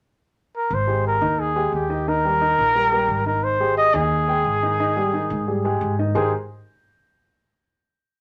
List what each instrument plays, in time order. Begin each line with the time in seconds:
0.57 trumpet A#4
0.70 upright bass G#1, trumpet C5
0.87 upright piano G#3 G4 G#4
1.07 trumpet A#4
1.21 upright bass D#2, upright piano D#3 D#4 D#5
1.40 trumpet G#4
1.56 upright piano G#3 G4 G#4
1.72 upright bass D#2, trumpet G4
1.89 upright piano D#3 D#4 D#5
2.07 upright piano D#3 D#4 D#5, trumpet A#4
2.25 upright piano G3 G4 A#4
2.41 upright piano D#3 D#4 D#5
2.58 upright bass A#1
2.75 upright piano G3 G4 A#4
2.92 upright piano G3 G4 A#4
3.08 upright bass G#1
3.26 upright piano D#3 D#4 D#5, trumpet A#4
3.44 trumpet C5
3.60 upright piano G#3 G4 G#4
3.77 trumpet D#5
3.94 upright bass D#2, upright piano D#3 D#4 D#5, trumpet G#4
4.28 upright piano G#3 G#4 G5
4.45 upright bass G#1
4.63 upright piano D#3 D#4 D#5
4.79 upright piano D#3 D#4 D#5
4.97 upright piano G3 G4 G#4
5.13 upright piano D#3 D#4 D#5
5.30 upright bass G#2
5.48 upright piano G3 G4 G#4
5.65 upright piano G#3 G4 G#4
5.81 upright bass G#2
5.99 upright piano D#3 D#4 D#5
6.15 upright bass G#1, upright piano G#3 D#4 G4 G#4 A#4 C5, trumpet G#4